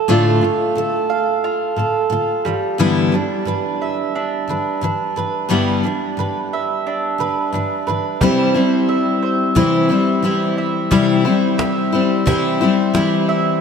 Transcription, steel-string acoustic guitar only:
0.08 0.40 A2 medium
0.08 0.42 D3 medium
0.08 0.43 A3 medium
0.08 0.43 D4 medium
0.08 0.43 F4 medium
0.41 0.70 A2 soft
0.41 0.71 D3 soft
0.75 1.04 A2 soft
0.75 1.05 D3 medium
1.76 2.05 A2 soft
1.76 2.06 D3 soft
2.10 2.38 A2 medium
2.10 2.40 D3 medium
2.45 2.73 G2 soft
2.45 2.74 D3 soft
2.45 2.74 E3 soft
2.78 3.11 G2 medium
2.78 3.13 D3 medium
2.78 3.13 E3 medium
2.78 3.13 G3 medium
2.78 3.14 B3 medium
2.78 3.14 E4 medium
3.12 3.40 G2 soft
3.12 3.41 D3 soft
3.12 3.42 E3 soft
3.45 3.74 G2 medium
3.45 3.75 D3 medium
3.45 3.75 E3 medium
4.48 4.76 G2 soft
4.48 4.77 D3 medium
4.48 4.77 E3 medium
4.81 5.10 G2 medium
4.81 5.10 D3 medium
4.81 5.11 E3 medium
5.16 5.44 G2 soft
5.16 5.45 D3 medium
5.16 5.45 E3 soft
5.49 5.82 G2 medium
5.49 5.84 D3 medium
5.49 5.84 E3 medium
5.49 5.84 G3 medium
5.49 5.84 B3 medium
5.49 5.84 E4 medium
5.83 6.11 G2 soft
5.83 6.12 D3 soft
5.83 6.13 E3 soft
6.17 6.45 G2 medium
6.17 6.46 D3 medium
6.17 6.47 E3 medium
7.18 7.47 G2 soft
7.18 7.48 D3 medium
7.18 7.48 E3 soft
7.53 7.81 G2 medium
7.53 7.81 D3 soft
7.53 7.82 E3 medium
7.87 8.15 G2 soft
7.87 8.15 D3 soft
7.87 8.16 E3 soft
8.21 8.55 C3 medium
8.21 8.55 E3 medium
8.21 8.56 G3 medium
8.21 8.54 C4 medium
8.21 8.53 E4 medium
8.54 9.55 G3 soft
8.54 9.55 C4 soft
8.54 9.56 E4 soft
9.55 9.90 C3 medium
9.55 9.90 E3 medium
9.55 9.90 G3 medium
9.55 9.89 C4 medium
9.55 9.88 E4 medium
9.89 10.23 G3 soft
9.89 10.24 C4 medium
9.89 10.23 E4 medium
10.22 10.91 E3 medium
10.22 10.91 G3 medium
10.22 10.91 C4 medium
10.22 10.92 E4 medium
10.91 11.25 C3 medium
10.91 11.25 E3 medium
10.91 11.26 G3 medium
10.91 11.25 C4 medium
10.91 11.23 E4 medium
11.25 11.94 G3 soft
11.25 11.93 C4 medium
11.25 11.92 E4 soft
11.92 12.26 G3 soft
11.92 12.26 C4 soft
11.92 12.26 E4 soft
12.26 12.60 C3 medium
12.26 12.61 E3 medium
12.26 12.61 G3 medium
12.26 12.61 C4 medium
12.26 12.60 E4 medium
12.61 12.94 G3 soft
12.61 12.95 C4 soft
12.61 12.95 E4 medium
12.94 13.61 E3 medium
12.94 13.61 G3 medium
12.94 13.61 C4 medium
12.94 13.61 E4 medium

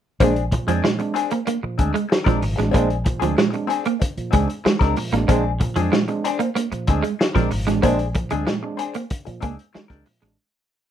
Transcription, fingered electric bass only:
0.20 0.58 A#1 loud
0.68 0.80 F2 medium
1.64 muted fingered electric bass stroke soft
1.79 1.92 D2 medium
2.27 2.39 A#1 medium
2.42 2.55 G#1 medium
2.58 2.71 A1 medium
2.75 3.12 A#1 loud
3.22 3.34 D2 medium
4.18 muted fingered electric bass stroke soft
4.33 4.46 C#2 loud
4.65 muted fingered electric bass stroke soft
4.81 4.93 C#2 medium
5.12 5.25 A1 medium
5.29 5.66 A#1 loud
5.76 5.89 F2 medium
6.72 muted fingered electric bass stroke soft
6.88 7.01 D2 loud
7.36 7.48 A#1 medium
7.52 7.64 G#1 medium
7.68 7.80 A1 medium
7.84 8.21 A#1 loud
8.32 8.44 D2 medium
9.27 muted fingered electric bass stroke soft
9.43 9.55 C#2 loud
9.75 muted fingered electric bass stroke soft
9.90 10.03 C#2 medium
10.22 10.35 A1 loud

